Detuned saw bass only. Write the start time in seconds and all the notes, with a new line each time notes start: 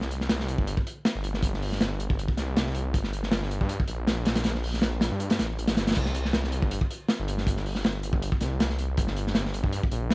Already playing: C2
0.58 G1
1.15 G1
2.10 G1
2.37 C2
2.94 G1
3.61 G2
3.88 A#1
5.12 G2
5.39 A1
5.77 G1
5.97 C2
6.62 G1
7.19 G1
8.13 G1
8.41 C2
8.98 G1
9.64 G2
9.92 A#1